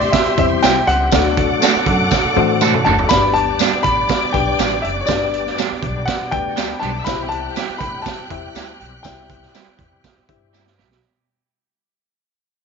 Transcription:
Already playing: tonewheel organ G3 C4 E4 G4, string section G4 E5 C6, grand piano D5
0.01 closed hi-hat
0.12 grand piano E5, kick, snare, closed hi-hat, tambourine
0.25 muted upright bass stroke, closed hi-hat
0.38 upright bass E2, reed electric piano G3 C4 E4 G4 C5, grand piano E5, kick, closed hi-hat
0.62 upright bass C2, clean electric guitar G3 C4 E4 G4, grand piano G5, snare, closed hi-hat, tambourine
0.87 upright bass C#2, grand piano F#5, closed hi-hat
1.12 upright bass D2, tonewheel organ F#3 A3 D4 F#4, reed electric piano A3 D4 F#4 A4 D5, string section A4 F#5 D6, kick, snare, closed hi-hat, tambourine
1.37 kick, closed hi-hat
1.62 clean electric guitar A3 D4 F#4 A4, snare, closed hi-hat, tambourine
1.75 muted upright bass stroke
1.86 upright bass F#2, kick, closed hi-hat
2.11 kick, snare, tambourine
2.24 muted upright bass stroke
2.36 upright bass A2, reed electric piano A3 D4 F#4 A4 C5, high tom
2.61 clean electric guitar A3 D4 F#4 A4, mid tom, tambourine
2.74 mid tom
2.85 upright bass F#1, clean electric guitar A3 D4 F#4 A4, grand piano A5, floor tom
2.99 floor tom
3.09 upright bass G1, tonewheel organ G3 B3 D4 G4, reed electric piano D4 G4 B4 D5, string section D5 D6, grand piano B5, kick, snare, closed hi-hat, tambourine
3.34 grand piano A5, closed hi-hat
3.59 clean electric guitar G3 B3 D4 G4, snare, closed hi-hat, tambourine
3.72 muted upright bass stroke
3.83 upright bass A1, grand piano B5, kick, closed hi-hat
4.09 kick, snare, closed hi-hat, tambourine
4.22 muted upright bass stroke
4.33 upright bass B1, reed electric piano D4 G4 B4 D5, grand piano G5, kick, closed hi-hat
4.59 upright bass A1, clean electric guitar G3 B3 D4 G4, snare, closed hi-hat, tambourine
4.82 upright bass F#1, grand piano E5, closed hi-hat
5.01 grand piano C#5
5.06 upright bass G1, reed electric piano D4 G4 A4 D5, tonewheel organ G4, grand piano D5, kick, snare, closed hi-hat, tambourine
5.14 reed electric piano B4
5.34 closed hi-hat
5.46 snare
5.58 clean electric guitar G3 B3 D4 G4, snare, closed hi-hat, tambourine
5.71 muted upright bass stroke
5.83 upright bass B1, kick, closed hi-hat
6.06 grand piano F#5, kick, snare, closed hi-hat, tambourine
6.21 muted upright bass stroke
6.31 upright bass D2, reed electric piano D4 G4 B4 D5, grand piano G5, kick, closed hi-hat
6.49 string section F#4 F#5
6.56 clean electric guitar G3 B3 D4 G4, string section G4 G5, snare, closed hi-hat, tambourine
6.65 string section A4 A5
6.74 string section B4 B5
6.79 upright bass B1, clean electric guitar G3 B3 D4 G4, string section C5 C6, grand piano A5, closed hi-hat
6.91 string section D5 D6
6.99 string section E5 E6
7.04 upright bass C2, tonewheel organ C4 E4 G4, reed electric piano E4 G4 C5 E5, string section G5 F#6, grand piano B5, kick, snare, closed hi-hat, tambourine
7.23 grand piano B5
7.29 grand piano A5, closed hi-hat
7.56 clean electric guitar G3 C4 E4 G4, snare, closed hi-hat, tambourine
7.69 muted upright bass stroke
7.78 upright bass D2, grand piano B5, kick, closed hi-hat
8.02 grand piano A5, kick, closed hi-hat
8.06 snare, tambourine
8.19 muted upright bass stroke
8.30 upright bass E2, reed electric piano E4 G4 C5 E5, kick, closed hi-hat
8.55 upright bass D2, clean electric guitar G3 C4 E4 G4, snare, closed hi-hat, tambourine
8.80 upright bass B1, closed hi-hat
9.03 upright bass C2, reed electric piano E4 G4 C5 E5, grand piano G5, kick, snare, closed hi-hat, tambourine
9.29 kick, closed hi-hat
9.42 snare
9.55 clean electric guitar G3 C4 E4 G4, snare, closed hi-hat, tambourine
9.67 muted upright bass stroke
9.79 upright bass E2, kick, closed hi-hat
10.04 kick, snare, closed hi-hat, tambourine
10.17 muted upright bass stroke
10.29 upright bass G2, reed electric piano E4 G4 C5 E5, kick, closed hi-hat
10.53 clean electric guitar G3 C4 E4 G4, snare, tambourine
10.67 snare
10.78 upright bass B1, clean electric guitar G3 C4 E4 G4, snare
10.92 snare

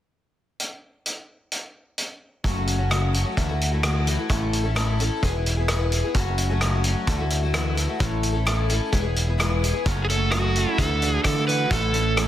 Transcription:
0.60 closed hi-hat
1.06 closed hi-hat
1.52 closed hi-hat
1.98 closed hi-hat
2.44 picked electric bass F#1, twelve-string acoustic guitar F#2 C#3 F#3 A3 C#4 F#4, kick, closed hi-hat
2.67 closed hi-hat
2.78 twelve-string acoustic guitar F#3 A3 C#4 F#4
2.90 twelve-string acoustic guitar F#2 C#3 F#3 A3 C#4 F#4, cross-stick, closed hi-hat
3.13 twelve-string acoustic guitar F#3 A3 C#4 F#4, closed hi-hat
3.24 twelve-string acoustic guitar F#3 A3 C#4 F#4
3.37 picked electric bass D2, twelve-string acoustic guitar D3 E3 A3 E4 F#4, kick, closed hi-hat
3.49 twelve-string acoustic guitar A3 E4 F#4
3.61 closed hi-hat
3.72 twelve-string acoustic guitar A3 E4 F#4
3.83 twelve-string acoustic guitar D3 E3 A3 E4 F#4, cross-stick, closed hi-hat
4.06 twelve-string acoustic guitar E3 A3 E4 F#4, closed hi-hat
4.17 twelve-string acoustic guitar A3 E4 F#4
4.29 picked electric bass A1, twelve-string acoustic guitar A2 E3 A3 C#4 E4 A4, kick, closed hi-hat
4.53 closed hi-hat
4.64 twelve-string acoustic guitar A3 C#4 E4 A4
4.75 twelve-string acoustic guitar A2 E3 A3 C#4 E4 A4, cross-stick, closed hi-hat
4.99 twelve-string acoustic guitar A3 C#4 E4 A4, closed hi-hat
5.22 picked electric bass E1, twelve-string acoustic guitar E3 B3 E4 G#4, kick, closed hi-hat
5.35 twelve-string acoustic guitar B3 E4 G#4
5.46 closed hi-hat
5.57 twelve-string acoustic guitar B3 E4 G#4
5.68 twelve-string acoustic guitar E3 B3 E4 G#4, cross-stick, closed hi-hat
5.92 twelve-string acoustic guitar E3 B3 E4 G#4, closed hi-hat
6.04 twelve-string acoustic guitar B3 E4 G#4
6.14 picked electric bass F#1, twelve-string acoustic guitar F#2 C#3 F#3 A3 C#4 F#4, kick, closed hi-hat
6.38 closed hi-hat
6.50 twelve-string acoustic guitar F#3 A3 C#4 F#4
6.61 twelve-string acoustic guitar F#2 C#3 F#3 A3 C#4 F#4, cross-stick, closed hi-hat
6.84 twelve-string acoustic guitar F#3 A3 C#4 F#4, closed hi-hat
7.07 picked electric bass D2, twelve-string acoustic guitar D3 E3 A3 E4 F#4, kick, closed hi-hat
7.18 twelve-string acoustic guitar A3 E4 F#4
7.30 closed hi-hat
7.43 twelve-string acoustic guitar A3 E4 F#4
7.54 twelve-string acoustic guitar D3 E3 A3 E4 F#4, cross-stick, closed hi-hat
7.75 twelve-string acoustic guitar E3 A3 E4 F#4, closed hi-hat
7.88 twelve-string acoustic guitar A3 E4 F#4
7.99 picked electric bass A1, twelve-string acoustic guitar A2 E3 A3 C#4 E4 A4, kick, closed hi-hat
8.23 closed hi-hat
8.33 twelve-string acoustic guitar A3 C#4 E4 A4
8.45 twelve-string acoustic guitar A2 E3 A3 C#4 E4 A4, cross-stick, closed hi-hat
8.69 twelve-string acoustic guitar A3 C#4 E4 A4, closed hi-hat
8.92 picked electric bass E1, twelve-string acoustic guitar E3 G#3 B3 E4 G#4, kick, closed hi-hat
9.03 twelve-string acoustic guitar B3 E4 G#4
9.16 closed hi-hat
9.27 twelve-string acoustic guitar B3 E4 G#4
9.38 twelve-string acoustic guitar E3 G#3 B3 E4 G#4, cross-stick, closed hi-hat
9.62 twelve-string acoustic guitar G#3 B3 E4 G#4, closed hi-hat
9.74 twelve-string acoustic guitar B3 E4 G#4
9.86 picked electric bass F#1, twelve-string acoustic guitar F#2 C#3 F#3 A3 C#4 F#4, kick, closed hi-hat
10.05 twelve-string acoustic guitar F#3, electric slide guitar G#4
10.10 twelve-string acoustic guitar A3 C#4 F#4, electric slide guitar A4, closed hi-hat
10.31 twelve-string acoustic guitar F#2 C#3 F#3 A3 C#4 F#4, electric slide guitar F#4, cross-stick, closed hi-hat
10.55 twelve-string acoustic guitar F#3 A3 C#4 F#4, closed hi-hat
10.67 twelve-string acoustic guitar F#3 A3 C#4 F#4
10.78 picked electric bass D2, twelve-string acoustic guitar D3 E3 A3 E4 F#4, electric slide guitar A4, kick, closed hi-hat
10.89 twelve-string acoustic guitar A3 E4 F#4
11.01 twelve-string acoustic guitar E3 A3 E4 F#4, clean electric guitar D4, closed hi-hat
11.12 twelve-string acoustic guitar A3 E4 F#4
11.24 twelve-string acoustic guitar D3 E3 A3 E4 F#4, picked electric bass D3, electric slide guitar A4, kick, cross-stick, closed hi-hat
11.35 twelve-string acoustic guitar A3 E4 F#4
11.47 twelve-string acoustic guitar E3 A3 E4 F#4, electric slide guitar B4, closed hi-hat
11.70 picked electric bass A1, twelve-string acoustic guitar A2 E3 A3 C#4 E4 A4, electric slide guitar A4, kick, closed hi-hat
11.92 twelve-string acoustic guitar A3 C#4 E4 A4, closed hi-hat
12.17 twelve-string acoustic guitar A2 E3 A3 C#4 E4 A4, cross-stick, closed hi-hat

